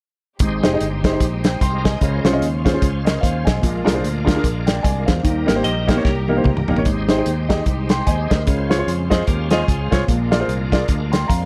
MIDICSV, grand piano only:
0, 0, Header, 1, 2, 480
1, 0, Start_track
1, 0, Key_signature, -4, "major"
1, 0, Tempo, 403226
1, 484, Time_signature, 4, 2, 24, 8
1, 13636, End_track
2, 0, Start_track
2, 0, Title_t, "Grand piano"
2, 0, Program_c, 0, 0
2, 480, Note_on_c, 0, 44, 63
2, 758, Note_on_c, 0, 67, 72
2, 759, Note_on_c, 0, 63, 77
2, 765, Note_on_c, 0, 68, 66
2, 768, Note_on_c, 0, 72, 82
2, 821, Note_off_c, 0, 67, 0
2, 822, Note_off_c, 0, 63, 0
2, 825, Note_off_c, 0, 68, 0
2, 826, Note_off_c, 0, 72, 0
2, 869, Note_on_c, 0, 63, 74
2, 871, Note_on_c, 0, 68, 66
2, 873, Note_on_c, 0, 67, 63
2, 882, Note_on_c, 0, 75, 79
2, 992, Note_off_c, 0, 63, 0
2, 993, Note_off_c, 0, 68, 0
2, 994, Note_off_c, 0, 67, 0
2, 998, Note_off_c, 0, 75, 0
2, 1199, Note_off_c, 0, 44, 0
2, 1249, Note_on_c, 0, 63, 76
2, 1257, Note_on_c, 0, 67, 65
2, 1257, Note_on_c, 0, 68, 67
2, 1264, Note_on_c, 0, 72, 82
2, 1307, Note_off_c, 0, 63, 0
2, 1311, Note_off_c, 0, 67, 0
2, 1311, Note_off_c, 0, 68, 0
2, 1315, Note_off_c, 0, 72, 0
2, 1336, Note_on_c, 0, 63, 68
2, 1339, Note_on_c, 0, 67, 61
2, 1347, Note_on_c, 0, 68, 61
2, 1347, Note_on_c, 0, 72, 72
2, 1466, Note_off_c, 0, 63, 0
2, 1467, Note_off_c, 0, 67, 0
2, 1471, Note_off_c, 0, 68, 0
2, 1471, Note_off_c, 0, 72, 0
2, 1724, Note_on_c, 0, 79, 56
2, 1733, Note_on_c, 0, 72, 49
2, 1910, Note_off_c, 0, 79, 0
2, 1919, Note_off_c, 0, 72, 0
2, 1923, Note_on_c, 0, 84, 70
2, 1928, Note_on_c, 0, 79, 58
2, 2194, Note_off_c, 0, 84, 0
2, 2197, Note_off_c, 0, 79, 0
2, 2198, Note_on_c, 0, 75, 48
2, 2198, Note_on_c, 0, 80, 56
2, 2392, Note_on_c, 0, 49, 67
2, 2660, Note_off_c, 0, 75, 0
2, 2660, Note_off_c, 0, 80, 0
2, 2678, Note_on_c, 0, 65, 75
2, 2681, Note_on_c, 0, 61, 80
2, 2684, Note_on_c, 0, 68, 72
2, 2685, Note_on_c, 0, 72, 86
2, 2742, Note_off_c, 0, 65, 0
2, 2744, Note_off_c, 0, 61, 0
2, 2745, Note_off_c, 0, 68, 0
2, 2746, Note_off_c, 0, 72, 0
2, 2767, Note_on_c, 0, 61, 76
2, 2772, Note_on_c, 0, 65, 69
2, 2775, Note_on_c, 0, 68, 65
2, 2778, Note_on_c, 0, 75, 81
2, 2901, Note_off_c, 0, 61, 0
2, 2904, Note_off_c, 0, 65, 0
2, 2906, Note_off_c, 0, 68, 0
2, 2907, Note_off_c, 0, 75, 0
2, 3116, Note_off_c, 0, 49, 0
2, 3151, Note_on_c, 0, 61, 79
2, 3151, Note_on_c, 0, 65, 70
2, 3159, Note_on_c, 0, 68, 68
2, 3164, Note_on_c, 0, 72, 85
2, 3219, Note_off_c, 0, 61, 0
2, 3219, Note_off_c, 0, 65, 0
2, 3223, Note_off_c, 0, 68, 0
2, 3225, Note_off_c, 0, 72, 0
2, 3245, Note_on_c, 0, 61, 66
2, 3257, Note_on_c, 0, 65, 63
2, 3262, Note_on_c, 0, 72, 72
2, 3264, Note_on_c, 0, 68, 65
2, 3381, Note_off_c, 0, 61, 0
2, 3387, Note_off_c, 0, 65, 0
2, 3390, Note_off_c, 0, 68, 0
2, 3390, Note_off_c, 0, 72, 0
2, 3632, Note_on_c, 0, 75, 60
2, 3645, Note_on_c, 0, 70, 53
2, 3820, Note_on_c, 0, 77, 66
2, 3828, Note_off_c, 0, 75, 0
2, 3835, Note_off_c, 0, 70, 0
2, 3836, Note_on_c, 0, 72, 55
2, 4102, Note_off_c, 0, 77, 0
2, 4107, Note_on_c, 0, 80, 58
2, 4111, Note_off_c, 0, 72, 0
2, 4115, Note_on_c, 0, 75, 47
2, 4306, Note_on_c, 0, 46, 63
2, 4574, Note_off_c, 0, 80, 0
2, 4579, Note_off_c, 0, 75, 0
2, 4580, Note_on_c, 0, 62, 81
2, 4586, Note_on_c, 0, 65, 74
2, 4590, Note_on_c, 0, 68, 74
2, 4592, Note_on_c, 0, 70, 95
2, 4653, Note_off_c, 0, 62, 0
2, 4656, Note_off_c, 0, 65, 0
2, 4659, Note_off_c, 0, 68, 0
2, 4660, Note_off_c, 0, 70, 0
2, 4682, Note_on_c, 0, 62, 71
2, 4691, Note_on_c, 0, 68, 73
2, 4692, Note_on_c, 0, 65, 70
2, 4701, Note_on_c, 0, 72, 78
2, 4819, Note_off_c, 0, 62, 0
2, 4824, Note_off_c, 0, 68, 0
2, 4825, Note_off_c, 0, 65, 0
2, 4829, Note_off_c, 0, 72, 0
2, 5033, Note_off_c, 0, 46, 0
2, 5056, Note_on_c, 0, 62, 80
2, 5068, Note_on_c, 0, 65, 72
2, 5069, Note_on_c, 0, 68, 69
2, 5080, Note_on_c, 0, 70, 84
2, 5132, Note_off_c, 0, 62, 0
2, 5138, Note_off_c, 0, 65, 0
2, 5138, Note_off_c, 0, 68, 0
2, 5144, Note_off_c, 0, 70, 0
2, 5176, Note_on_c, 0, 62, 69
2, 5185, Note_on_c, 0, 65, 66
2, 5188, Note_on_c, 0, 68, 63
2, 5189, Note_on_c, 0, 70, 77
2, 5307, Note_off_c, 0, 62, 0
2, 5311, Note_off_c, 0, 65, 0
2, 5313, Note_off_c, 0, 68, 0
2, 5313, Note_off_c, 0, 70, 0
2, 5553, Note_on_c, 0, 79, 59
2, 5560, Note_on_c, 0, 74, 53
2, 5739, Note_off_c, 0, 74, 0
2, 5747, Note_on_c, 0, 80, 69
2, 5749, Note_off_c, 0, 79, 0
2, 5757, Note_on_c, 0, 74, 58
2, 6026, Note_off_c, 0, 80, 0
2, 6026, Note_on_c, 0, 77, 61
2, 6031, Note_off_c, 0, 74, 0
2, 6037, Note_on_c, 0, 72, 50
2, 6228, Note_on_c, 0, 51, 67
2, 6494, Note_off_c, 0, 77, 0
2, 6500, Note_off_c, 0, 72, 0
2, 6504, Note_on_c, 0, 58, 76
2, 6507, Note_on_c, 0, 63, 70
2, 6514, Note_on_c, 0, 67, 73
2, 6522, Note_on_c, 0, 70, 87
2, 6576, Note_off_c, 0, 58, 0
2, 6577, Note_off_c, 0, 63, 0
2, 6580, Note_off_c, 0, 67, 0
2, 6585, Note_off_c, 0, 70, 0
2, 6607, Note_on_c, 0, 58, 71
2, 6617, Note_on_c, 0, 63, 65
2, 6620, Note_on_c, 0, 67, 71
2, 6622, Note_on_c, 0, 72, 80
2, 6742, Note_off_c, 0, 58, 0
2, 6747, Note_off_c, 0, 63, 0
2, 6748, Note_off_c, 0, 67, 0
2, 6749, Note_off_c, 0, 72, 0
2, 6954, Note_off_c, 0, 51, 0
2, 6991, Note_on_c, 0, 58, 77
2, 6995, Note_on_c, 0, 63, 74
2, 7002, Note_on_c, 0, 67, 69
2, 7007, Note_on_c, 0, 70, 84
2, 7059, Note_off_c, 0, 58, 0
2, 7061, Note_off_c, 0, 63, 0
2, 7065, Note_off_c, 0, 67, 0
2, 7067, Note_off_c, 0, 70, 0
2, 7096, Note_on_c, 0, 58, 66
2, 7104, Note_on_c, 0, 63, 62
2, 7110, Note_on_c, 0, 73, 71
2, 7112, Note_on_c, 0, 67, 59
2, 7227, Note_off_c, 0, 58, 0
2, 7230, Note_off_c, 0, 63, 0
2, 7233, Note_off_c, 0, 73, 0
2, 7235, Note_off_c, 0, 67, 0
2, 7482, Note_on_c, 0, 58, 74
2, 7485, Note_on_c, 0, 63, 66
2, 7492, Note_on_c, 0, 70, 82
2, 7493, Note_on_c, 0, 67, 66
2, 7545, Note_off_c, 0, 58, 0
2, 7546, Note_off_c, 0, 63, 0
2, 7550, Note_off_c, 0, 67, 0
2, 7550, Note_off_c, 0, 70, 0
2, 7573, Note_on_c, 0, 58, 68
2, 7579, Note_on_c, 0, 63, 63
2, 7587, Note_on_c, 0, 67, 60
2, 7590, Note_on_c, 0, 72, 76
2, 7705, Note_off_c, 0, 58, 0
2, 7708, Note_off_c, 0, 63, 0
2, 7712, Note_off_c, 0, 67, 0
2, 7714, Note_off_c, 0, 72, 0
2, 7967, Note_on_c, 0, 58, 72
2, 7971, Note_on_c, 0, 63, 66
2, 7971, Note_on_c, 0, 67, 63
2, 7981, Note_on_c, 0, 70, 74
2, 8027, Note_off_c, 0, 58, 0
2, 8029, Note_off_c, 0, 63, 0
2, 8029, Note_off_c, 0, 67, 0
2, 8034, Note_off_c, 0, 70, 0
2, 8067, Note_on_c, 0, 58, 62
2, 8068, Note_on_c, 0, 63, 62
2, 8075, Note_on_c, 0, 73, 69
2, 8078, Note_on_c, 0, 67, 54
2, 8167, Note_off_c, 0, 58, 0
2, 8167, Note_off_c, 0, 63, 0
2, 8171, Note_off_c, 0, 73, 0
2, 8171, Note_on_c, 0, 44, 62
2, 8172, Note_off_c, 0, 67, 0
2, 8441, Note_on_c, 0, 63, 76
2, 8448, Note_on_c, 0, 67, 72
2, 8455, Note_on_c, 0, 68, 74
2, 8457, Note_on_c, 0, 72, 89
2, 8504, Note_off_c, 0, 63, 0
2, 8507, Note_off_c, 0, 67, 0
2, 8511, Note_off_c, 0, 68, 0
2, 8512, Note_off_c, 0, 72, 0
2, 8536, Note_on_c, 0, 63, 67
2, 8543, Note_on_c, 0, 67, 68
2, 8550, Note_on_c, 0, 72, 79
2, 8551, Note_on_c, 0, 68, 64
2, 8667, Note_off_c, 0, 63, 0
2, 8670, Note_off_c, 0, 67, 0
2, 8674, Note_off_c, 0, 68, 0
2, 8674, Note_off_c, 0, 72, 0
2, 8885, Note_off_c, 0, 44, 0
2, 8914, Note_on_c, 0, 63, 73
2, 8916, Note_on_c, 0, 67, 65
2, 8926, Note_on_c, 0, 68, 70
2, 8929, Note_on_c, 0, 75, 80
2, 9038, Note_off_c, 0, 63, 0
2, 9040, Note_off_c, 0, 67, 0
2, 9044, Note_off_c, 0, 68, 0
2, 9046, Note_off_c, 0, 75, 0
2, 9407, Note_on_c, 0, 84, 60
2, 9416, Note_on_c, 0, 79, 49
2, 9596, Note_off_c, 0, 84, 0
2, 9601, Note_off_c, 0, 79, 0
2, 9602, Note_on_c, 0, 80, 71
2, 9607, Note_on_c, 0, 75, 53
2, 9870, Note_off_c, 0, 75, 0
2, 9874, Note_off_c, 0, 80, 0
2, 9885, Note_on_c, 0, 70, 48
2, 9888, Note_on_c, 0, 75, 58
2, 10075, Note_on_c, 0, 49, 65
2, 10344, Note_off_c, 0, 70, 0
2, 10345, Note_off_c, 0, 75, 0
2, 10352, Note_on_c, 0, 65, 77
2, 10360, Note_on_c, 0, 68, 70
2, 10366, Note_on_c, 0, 73, 87
2, 10367, Note_on_c, 0, 72, 70
2, 10419, Note_off_c, 0, 65, 0
2, 10423, Note_off_c, 0, 68, 0
2, 10427, Note_off_c, 0, 72, 0
2, 10427, Note_off_c, 0, 73, 0
2, 10455, Note_on_c, 0, 65, 71
2, 10456, Note_on_c, 0, 68, 66
2, 10459, Note_on_c, 0, 72, 68
2, 10466, Note_on_c, 0, 73, 82
2, 10586, Note_off_c, 0, 65, 0
2, 10586, Note_off_c, 0, 68, 0
2, 10588, Note_off_c, 0, 72, 0
2, 10591, Note_off_c, 0, 73, 0
2, 10797, Note_off_c, 0, 49, 0
2, 10833, Note_on_c, 0, 68, 69
2, 10834, Note_on_c, 0, 65, 74
2, 10840, Note_on_c, 0, 75, 85
2, 10842, Note_on_c, 0, 72, 70
2, 10958, Note_off_c, 0, 65, 0
2, 10958, Note_off_c, 0, 68, 0
2, 10961, Note_off_c, 0, 75, 0
2, 10962, Note_off_c, 0, 72, 0
2, 11317, Note_on_c, 0, 68, 68
2, 11319, Note_on_c, 0, 65, 73
2, 11330, Note_on_c, 0, 72, 67
2, 11332, Note_on_c, 0, 75, 80
2, 11440, Note_off_c, 0, 68, 0
2, 11441, Note_off_c, 0, 65, 0
2, 11446, Note_off_c, 0, 72, 0
2, 11447, Note_off_c, 0, 75, 0
2, 11798, Note_on_c, 0, 65, 76
2, 11801, Note_on_c, 0, 68, 70
2, 11805, Note_on_c, 0, 72, 70
2, 11814, Note_on_c, 0, 73, 84
2, 11920, Note_off_c, 0, 65, 0
2, 11922, Note_off_c, 0, 68, 0
2, 11923, Note_off_c, 0, 72, 0
2, 11928, Note_off_c, 0, 73, 0
2, 11987, Note_on_c, 0, 46, 69
2, 12274, Note_on_c, 0, 65, 82
2, 12283, Note_on_c, 0, 68, 70
2, 12283, Note_on_c, 0, 70, 73
2, 12283, Note_on_c, 0, 74, 86
2, 12340, Note_off_c, 0, 65, 0
2, 12344, Note_off_c, 0, 68, 0
2, 12344, Note_off_c, 0, 70, 0
2, 12345, Note_off_c, 0, 74, 0
2, 12376, Note_on_c, 0, 65, 79
2, 12378, Note_on_c, 0, 68, 72
2, 12381, Note_on_c, 0, 70, 69
2, 12391, Note_on_c, 0, 72, 82
2, 12505, Note_off_c, 0, 65, 0
2, 12507, Note_off_c, 0, 68, 0
2, 12508, Note_off_c, 0, 70, 0
2, 12513, Note_off_c, 0, 72, 0
2, 12712, Note_off_c, 0, 46, 0
2, 12763, Note_on_c, 0, 65, 78
2, 12765, Note_on_c, 0, 70, 73
2, 12767, Note_on_c, 0, 68, 75
2, 12770, Note_on_c, 0, 74, 82
2, 12882, Note_off_c, 0, 65, 0
2, 12883, Note_off_c, 0, 70, 0
2, 12884, Note_off_c, 0, 68, 0
2, 12885, Note_off_c, 0, 74, 0
2, 13235, Note_on_c, 0, 84, 58
2, 13241, Note_on_c, 0, 79, 52
2, 13427, Note_on_c, 0, 82, 69
2, 13428, Note_off_c, 0, 84, 0
2, 13431, Note_off_c, 0, 79, 0
2, 13437, Note_on_c, 0, 77, 57
2, 13636, Note_off_c, 0, 77, 0
2, 13636, Note_off_c, 0, 82, 0
2, 13636, End_track
0, 0, End_of_file